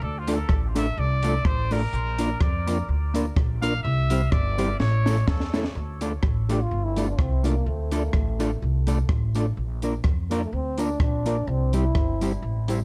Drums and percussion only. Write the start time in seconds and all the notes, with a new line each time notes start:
0.27 closed hi-hat, tambourine
0.49 kick, cross-stick
0.76 closed hi-hat, tambourine
1.23 closed hi-hat, tambourine
1.45 kick, cross-stick
1.71 open hi-hat, tambourine
1.93 hi-hat pedal
2.18 closed hi-hat, tambourine
2.41 kick, cross-stick
2.67 closed hi-hat, tambourine
3.15 closed hi-hat, tambourine
3.36 kick, cross-stick
3.62 closed hi-hat, tambourine
4.10 closed hi-hat, tambourine
4.32 kick, cross-stick
4.58 closed hi-hat, tambourine
4.80 snare
5.06 snare, tambourine
5.27 kick, snare
5.40 snare
5.54 snare, tambourine
5.64 snare
6.01 closed hi-hat, tambourine
6.23 kick, cross-stick
6.49 closed hi-hat, tambourine
6.96 closed hi-hat, tambourine
7.19 kick, cross-stick
7.44 closed hi-hat, tambourine
7.91 closed hi-hat, tambourine
8.13 kick, cross-stick
8.40 closed hi-hat, tambourine
8.87 closed hi-hat, tambourine
9.09 kick, cross-stick
9.35 closed hi-hat, tambourine
9.82 closed hi-hat, tambourine
10.04 kick, cross-stick
10.31 closed hi-hat, tambourine
10.78 closed hi-hat, tambourine
11.00 kick, cross-stick
11.26 closed hi-hat, tambourine
11.73 closed hi-hat, tambourine
11.95 kick, cross-stick
12.21 closed hi-hat, tambourine
12.68 closed hi-hat, tambourine